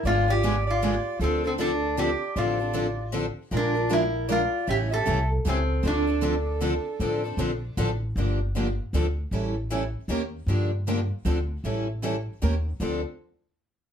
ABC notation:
X:1
M:3/4
L:1/16
Q:"Swing" 1/4=155
K:Dm
V:1 name="Soprano saxophone"
d2 d4 d6 | A2 A2 A4 d4 | d8 z4 | B4 B4 d4 |
e2 e4 z2 A4 | A12- | A8 z4 | z12 |
z12 | z12 | z12 | z12 |]
V:2 name="Resonator guitar played with a steel bar"
^E2 G4 E6 | C2 C2 D4 G4 | F8 z4 | D4 E4 F4 |
G2 A4 z2 ^B,4 | D12- | D8 z4 | z12 |
z12 | z12 | z12 | z12 |]
V:3 name="Steel-string acoustic guitar"
[D,^G,=B,^E^G]2 [B,EG]2 [D,G,B,EG] z3 [D,G,B,EG] z3 | [D,F,CDA]2 [CDA]2 [D,F,CDA] z3 [D,F,CDA] z3 | [D,F,CDA]2 [CDA]2 [D,F,CDA] z3 [D,F,CDA] z3 | [F,_A,DFB]2 [DFB]2 [F,A,DFB] z3 [F,A,DFB] z3 |
[^C,E,A,^CG]2 [A,CG]2 [C,E,A,CG] z3 [C,E,A,CG] z3 | [D,F,CDA]2 [CDA]2 [D,F,CDA] z3 [D,F,CDA] z3 | [D,F,CDA]2 [CDA]2 [D,F,CDA] z3 [D,F,CDA] z3 | [D,F,B,DG]2 z2 [D,F,B,DG] z3 [D,F,CDA] z3 |
[E,G,^CEA]2 z2 [E,G,CEA] z3 [_E,B,_DGB] z3 | [D,F,B,DG]2 z2 [D,F,B,DG] z3 [D,F,CDA] z3 | [E,G,^CEA]2 z2 [E,G,CEA] z3 [_E,B,_DGB] z3 | [D,F,CDA]2 z8 z2 |]
V:4 name="Steel-string acoustic guitar"
[D,^G,=B,^E^G]2 z2 [D,G,B,EG] z3 [D,G,B,EG] z3 | [D,F,CDA]2 z2 [D,F,CDA] z3 [D,F,CDA] z3 | [D,F,CDA]2 z2 [D,F,CDA] z3 [D,F,CDA] z3 | [F,_A,DFB]2 z2 [F,A,DFB] z3 [F,A,DFB] z3 |
[E,G,^CEA]2 z2 [E,G,CEA] z3 [E,G,CEA] z3 | [D,F,CDA]2 z2 [D,F,CDA] z3 [D,F,CDA] z3 | [D,F,CDA]2 z2 [D,F,CDA] z3 [D,F,CDA] z3 | [D,F,B,DG]2 z2 [D,F,B,DG] z3 [D,F,CDA] z3 |
[E,G,^CEA]2 z2 [E,G,CEA] z3 [_E,B,_DGB] z3 | [D,F,B,DG]2 z2 [D,F,B,DG] z3 [D,F,CDA] z3 | [E,G,^CEA]2 z2 [E,G,CEA] z3 [_E,B,_DGB] z3 | [D,F,CDA]2 z8 z2 |]
V:5 name="Upright bass" clef=bass
^G,,,12 | D,,12 | A,,,12 | B,,,12 |
A,,,4 ^B,,,4 ^C,,4 | D,,12 | A,,,4 B,,,4 A,,,4 | G,,,8 D,,4 |
A,,,8 _E,,4 | G,,8 D,,4 | A,,,8 _E,,4 | D,,2 z8 z2 |]